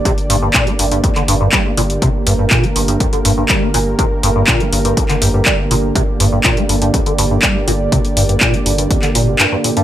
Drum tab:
HH |xxo-xxoxxxo-x-ox|x-o-xxoxxxo-x-o-|x-o-xxoxxxo-x-o-|x-o-xxoxxxo-x-o-|
CP |----x----x--x---|----x-------x---|----x----x--x---|----x-------x---|
BD |o---o---o---o---|o---o---o---o---|o---o---o---o---|o---o---o---o---|

HH |xxoxxxoxxxo-x-ox|
CP |----x----x--x---|
BD |o---o---o-------|